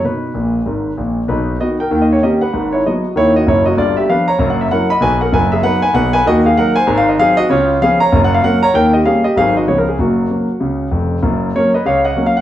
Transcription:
0.04 B2 D#4 B4
0.34 A#1 A#2
0.66 G#1 G#2
0.97 A#1 A#2
1.28 B1 B2 D#4 B4
1.60 D#3 B3 D#4 F#4 D#5
1.80 A#4 G5
1.91 D#2 D#3
2.02 D#5
2.13 C#5
2.22 D#3 A#3 C#4 G4 D#5
2.41 B4 F#5
2.53 G#1 G#2
2.72 E4 C#5
2.86 F#3 G#3 B3 F#4 D#5
3.16 D#2 D#3 E4 C#5
3.36 F#4 D#5
3.47 F#1 F#2 E4 C#5
3.66 F#4 D#5
3.77 G1 G2 F4 D5
3.97 G4 E5
4.09 F3 B3 D4 B4 F5
4.28 C#5 A#5
4.39 F#1 F#2
4.50 F#5
4.61 E5
4.71 F#3 C#4 E4 A#4 F#5
4.90 D#5 B5
5.01 B1 B2 B4 G#5
5.21 A#4 F#5
5.32 F#1 F#2 B4 G#5
5.52 G#4 E5
5.63 F#3 B3 D#4 B4 F#5
5.82 B4 G#5
5.94 B1 B2 B4 F#5
6.13 B4 G#5
6.26 D#2 D#3 F#4 D#5
6.46 G#4 F5
6.57 F#3 A#3 D#4 A#4 F#5
6.76 C5 G#5
6.87 G#1 G#2
6.98 F5
7.09 D#5
7.18 F#3 C4 D#4 G#4 F5
7.37 F#4 D#5
7.50 C#2 C#3 F4 C#5
7.82 F3 B3 C#4 G#4 F5
8.00 C#5 A#5
8.12 F#1 F#2
8.24 F#5
8.34 F5
8.43 F#3 A#3 C#4 A#4 F#5
8.63 C#5 A#5
8.74 D#2 D#3 A#4 G5
8.93 G4 D#5
9.05 G3 A#3 C#4 G#4 F5
9.24 G4 D#5
9.36 G#1 G#2 F#3 G#3 C4 G#4 F5
9.57 F#4 D#5
9.67 C#2 C#3 F3 G#3 B3 C#5
9.78 A#4
9.89 G#4
9.99 F#1 F#2 A#3 F#4
10.30 C#3 F#3 A#3
10.60 C#2 C#3
10.91 F1 F2
11.23 F#1 F#2
11.55 F#3 A#3 C#4 A#4 C#5
11.74 B4 D#5
11.85 C#2 C#3 C#5 F5
12.05 D#5 F#5
12.16 F#3 A#3 C#4
12.26 F5
12.37 F#5

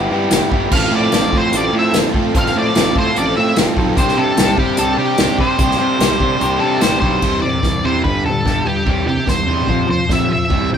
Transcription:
Already playing: G3 B3 E4 G4 D5 E5 B5
0.10 G2 G3 B3 E4 G4
0.31 G1 G3 B3 E4, snare, closed hi-hat
0.35 G4
0.51 G1 B3 E4 G4, kick
0.70 A1 A2 F3 C4 F4 A4 C5 F5 C6, kick, crash
0.74 F5
0.91 A2 F4 A4
0.95 C4 D5
1.12 A1 A2 F3 C4 F4 A4, snare, closed hi-hat
1.32 A2 C4 F4 A4, kick
1.38 C5
1.52 A1 F3 C4 F4 A4, closed hi-hat
1.57 D5
1.73 A2 F3 C4 F4 A4
1.77 A2 E5
1.93 A1 F3 C4 F4 A4, snare, closed hi-hat
2.13 A2 F4 A4, kick
2.17 C4
2.33 A1 A2 F3 C4 F4 A4, kick, closed hi-hat
2.38 F5
2.46 snare
2.52 A2 F4 A4
2.56 C4 D5
2.72 A2 F3 C4 F4, snare, closed hi-hat
2.77 A1 A4
2.93 A2 F4 A4, kick
2.98 C4 C5
3.15 A1 F3 C4 F4 A4 D5, closed hi-hat
3.35 A2 F3 C4 F4 A4 E5
3.40 A2
3.56 A1 F3 C4 F4 A4, snare, closed hi-hat
3.75 B1 C4 F4 A4, kick
3.95 C2 C3 G3 C4 D4 G4 C5 D5, kick, closed hi-hat
4.08 snare
4.15 C3 C4 D4 G4 A4
4.35 C2 C3 G3 C4 D4 G4, snare, closed hi-hat
4.55 C3 C4 D4 G4, kick
4.76 C2 G3 C4 D4 G4 A4, closed hi-hat
4.96 C3 G3 C4 D4 G4
5.17 C2 G3 C4 D4 G4, snare, closed hi-hat
5.37 C3 C4 D4 G4 C5, kick
5.56 C2 C3 G3 C4 D4 G4, kick, closed hi-hat
5.71 snare
5.77 C3 C4 D4 G4
5.98 C2 C3 G3 C4 D4 G4, snare, closed hi-hat
6.18 C3 C4 D4 G4, kick
6.37 G3 C4 D4 G4
6.41 C2, closed hi-hat
6.58 C3 G3 C4 D4 G4 A4
6.79 A1 G3 C4 D4 G4 C5, snare, closed hi-hat
6.99 B1 C4 D4 G4 C5, kick
7.19 C2 C3 E3 G3, kick, floor tom, crash
7.41 C3 E3 D5, floor tom, mid tom
7.53 floor tom
7.62 C2 C3 E3, kick, snare
7.83 C3 E3 G3 C5, floor tom
8.04 G1 G2 D3 G3 B4, kick, floor tom
8.25 G2 D3 A4, floor tom, mid tom
8.45 G1 G2 D3 G3, kick, snare
8.56 floor tom
8.65 G2 D3 G4, floor tom
8.86 C2 C3 E3 G3, kick, floor tom
9.06 C3 E3 G4, floor tom
9.17 floor tom
9.27 C2 C3 E3 C5, kick, snare
9.38 floor tom
9.46 E2 C3 E3 G3, floor tom
9.59 mid tom
9.68 F2 C3 F3, kick, floor tom
9.86 F2 C3 F3, floor tom, mid tom
9.90 C5
10.09 F2 C3 F3 E5, kick, snare, mid tom
10.20 floor tom
10.29 F2 C3 F3 E5, floor tom
10.50 C2 C3 E3 G3, kick, floor tom
10.70 C3 E3 G5, floor tom, mid tom

